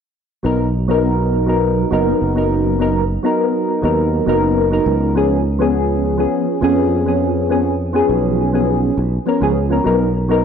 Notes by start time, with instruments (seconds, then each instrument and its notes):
0.43 fretless electric bass B1, synth keys F#3 B3 D#4 A#4
0.88 synth keys F#3 B3 D#4 A#4
1.46 synth keys F#3 B3 D#4 A#4
1.91 fretless electric bass F#1, synth keys F#3 B3 D#4 A#4
2.22 fretless electric bass F#1
2.35 synth keys F#3 B3 D#4 A#4
2.79 synth keys F#3 B3 D#4 A#4
3.23 synth keys F#3 B3 D#4 A#4
3.82 fretless electric bass D#2, synth keys F#3 B3 D#4 A#4
4.26 fretless electric bass F#1, synth keys F#3 B3 D#4 A#4
4.71 synth keys F#3 B3 D#4 A#4
4.86 fretless electric bass C#2
5.15 synth keys F3 B3 C#4 G#4
5.59 synth keys F3 B3 C#4 G#4
6.18 synth keys F3 B3 C#4 G#4
6.61 fretless electric bass F2, synth keys F3 B3 C#4 G#4
7.05 synth keys F3 B3 C#4 G#4
7.49 synth keys F3 B3 C#4 G#4
7.93 synth keys F3 B3 C#4 G#4
8.09 fretless electric bass B1
8.52 synth keys F3 B3 C#4 G#4
8.98 fretless electric bass B1
9.26 synth keys F3 B3 C#4 A#4
9.40 fretless electric bass C#2, synth keys F3 B3 C#4 G#4
9.70 synth keys F3 B3 C#4 A#4
9.84 fretless electric bass B1, synth keys F#3 B3 D#4 A#4
10.29 synth keys F#3 B3 D#4 A#4